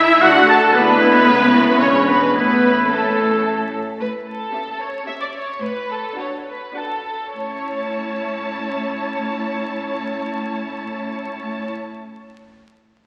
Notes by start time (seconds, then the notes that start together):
Already playing: E4 G#4 E5 E6
0.21 D2 D3 A3 D4 F#4 F#5 F#6
0.47 A4 A5 A6
0.74 D2 D3 G#3 B3 D4 E4 B4 B5
1.01 E4
1.28 C#2 C#3 A3 E4 G#4
1.54 F#4
1.80 E1 E2 G#3 C#4 D4 C#5 C#6
2.07 B3 B4 B5
2.34 A1 A2 A3 B3 C#4 E4 B4 B5
2.89 A3 C#4 A4 A5
3.99 A2 B4
4.28 A4
4.53 C#4 G4 E5
4.81 C#5
5.07 C#4 G4 E5
5.20 D5
5.34 C#5
5.61 A2 B4
5.90 A4
6.16 D4 F#4 C#5 F#5
6.46 B4
6.74 D4 F#4 A4 F#5
7.34 A2 C#4 E4 C#5 A5